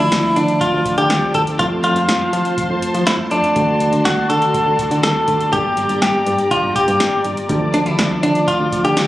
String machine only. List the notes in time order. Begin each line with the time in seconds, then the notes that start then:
Already playing: F3 D5 A5 D6
1.59 C5 C6
3.56 F#4 D5
5.52 G4 A#5 D6
7.49 F3 A5 D6